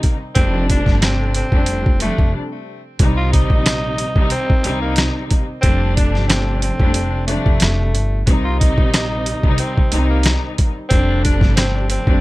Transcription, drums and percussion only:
0.03 kick, closed hi-hat
0.35 kick, closed hi-hat
0.70 kick, closed hi-hat
0.86 kick, snare
1.02 cross-stick, snare, closed hi-hat
1.34 closed hi-hat
1.52 kick
1.66 closed hi-hat
1.86 kick
2.00 closed hi-hat
2.18 kick
2.99 kick, closed hi-hat
3.33 kick, closed hi-hat
3.50 kick
3.66 cross-stick, snare, closed hi-hat
3.98 closed hi-hat
4.16 kick
4.30 closed hi-hat
4.50 kick
4.64 closed hi-hat
4.96 cross-stick, snare, closed hi-hat
5.31 kick, closed hi-hat
5.63 kick, closed hi-hat
5.97 kick, closed hi-hat
6.15 snare
6.30 cross-stick, snare, closed hi-hat
6.62 closed hi-hat
6.80 kick
6.94 closed hi-hat
7.28 closed hi-hat
7.46 kick
7.60 cross-stick, snare, closed hi-hat
7.95 closed hi-hat
8.27 kick, closed hi-hat
8.61 kick, closed hi-hat
8.78 kick
8.94 cross-stick, snare, closed hi-hat
9.26 closed hi-hat
9.43 kick
9.58 closed hi-hat
9.78 kick
9.92 closed hi-hat
10.23 cross-stick, snare, closed hi-hat
10.58 kick, closed hi-hat
10.91 kick, closed hi-hat
11.25 kick, closed hi-hat
11.41 kick, snare
11.57 cross-stick, snare, closed hi-hat
11.90 closed hi-hat
12.07 kick

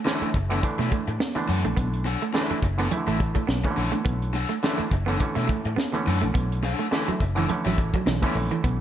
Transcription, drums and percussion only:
0.07 snare, high conga
0.23 closed hi-hat
0.34 kick, closed hi-hat
0.51 closed hi-hat
0.63 kick, closed hi-hat
0.80 snare, closed hi-hat
0.91 kick, closed hi-hat, muted conga
1.07 closed hi-hat
1.20 snare, high conga
1.36 closed hi-hat, high conga
1.49 open hi-hat
1.64 closed hi-hat, high conga
1.77 kick, closed hi-hat
1.93 closed hi-hat
2.05 closed hi-hat, muted conga
2.21 closed hi-hat
2.34 snare, high conga
2.51 closed hi-hat
2.62 kick, closed hi-hat, muted conga
2.79 closed hi-hat
2.91 closed hi-hat, low conga
3.07 closed hi-hat
3.19 kick, closed hi-hat, muted conga
3.35 kick, closed hi-hat
3.49 snare, high conga
3.64 kick, closed hi-hat, high conga
3.77 open hi-hat
3.92 closed hi-hat, high conga
4.05 kick, closed hi-hat
4.22 closed hi-hat
4.35 closed hi-hat, muted conga
4.50 closed hi-hat
4.64 snare, high conga
4.79 closed hi-hat
4.91 kick, closed hi-hat, muted conga
5.08 closed hi-hat
5.20 kick, closed hi-hat
5.36 closed hi-hat
5.48 kick, closed hi-hat, muted conga
5.65 closed hi-hat
5.77 snare, high conga
5.94 closed hi-hat, high conga
6.07 open hi-hat
6.21 closed hi-hat, high conga
6.35 kick, closed hi-hat
6.52 closed hi-hat
6.62 closed hi-hat, muted conga
6.79 closed hi-hat
6.92 snare, high conga
7.08 closed hi-hat
7.20 kick, closed hi-hat, muted conga
7.37 closed hi-hat
7.49 closed hi-hat, low conga
7.65 snare, closed hi-hat
7.77 kick, closed hi-hat, muted conga
7.93 kick, closed hi-hat
8.06 snare, high conga
8.22 kick, closed hi-hat, high conga
8.35 open hi-hat
8.50 closed hi-hat, high conga
8.64 kick, closed hi-hat

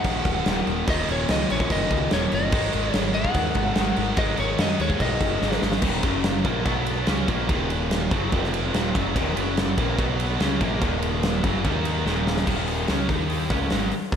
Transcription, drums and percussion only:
0.04 kick, crash
0.25 kick, crash
0.46 snare, crash
0.67 crash
0.88 kick, crash
1.08 crash
1.29 snare, crash
1.50 crash
1.60 kick
1.70 kick, crash
1.91 kick, crash
2.11 snare, crash
2.32 crash
2.52 kick, crash
2.73 crash
2.94 snare, crash
3.14 crash
3.25 kick
3.34 kick, crash
3.55 kick, crash
3.75 snare, crash
3.96 crash
4.17 kick, crash
4.37 crash
4.58 snare, crash
4.80 crash
4.90 kick
5.00 kick, crash
5.21 kick, crash
5.42 snare
5.52 snare
5.62 snare
5.72 snare
5.82 kick, crash
6.03 kick, ride
6.24 snare, ride
6.45 kick, ride
6.66 kick, ride
6.86 ride
7.07 snare, ride
7.28 kick, ride
7.49 kick, ride
7.70 ride
7.91 snare, ride
8.11 kick, ride
8.32 kick, ride
8.44 snare
8.54 ride
8.74 snare, ride
8.95 kick, ride
9.16 kick, ride
9.37 ride
9.57 snare, ride
9.78 kick, ride
9.99 kick, ride
10.20 ride
10.40 snare, ride
10.61 kick, ride
10.81 kick, ride
11.02 ride
11.23 snare, ride
11.44 kick, ride
11.65 kick, ride
11.85 ride
12.06 snare
12.27 snare
12.37 snare
12.47 kick, crash
12.68 open hi-hat
12.88 snare, open hi-hat
13.09 kick, open hi-hat
13.30 open hi-hat
13.50 kick, open hi-hat
13.70 snare, open hi-hat
13.92 open hi-hat
14.12 kick, open hi-hat

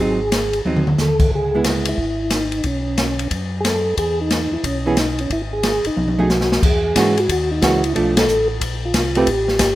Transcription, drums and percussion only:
0.32 snare, hi-hat pedal, ride
0.53 ride
0.66 high tom
0.76 mid tom
0.87 mid tom
0.98 snare, hi-hat pedal
1.20 kick, crash
1.31 kick
1.64 snare, hi-hat pedal, ride
1.85 ride
1.98 kick
2.30 snare, hi-hat pedal, ride
2.52 ride
2.64 kick, ride
2.98 snare, hi-hat pedal, ride
3.19 ride
3.31 kick, ride
3.65 snare, hi-hat pedal, ride
3.97 kick, ride
4.31 snare, hi-hat pedal, ride
4.64 kick, ride
4.97 snare, hi-hat pedal, ride
5.19 ride
5.30 kick, ride
5.63 snare, hi-hat pedal, ride
5.85 ride
5.97 high tom
6.08 high tom
6.19 high tom
6.30 snare, hi-hat pedal
6.41 snare
6.52 snare
6.63 kick, crash
6.96 kick, snare, hi-hat pedal, ride
7.17 ride
7.29 kick, ride
7.62 kick, snare, hi-hat pedal, ride
7.84 ride
7.95 kick, ride
8.17 snare, ride
8.28 hi-hat pedal
8.61 kick, ride
8.94 kick, snare, hi-hat pedal, ride
9.15 ride
9.27 kick, ride
9.48 snare
9.59 kick, snare, hi-hat pedal, ride

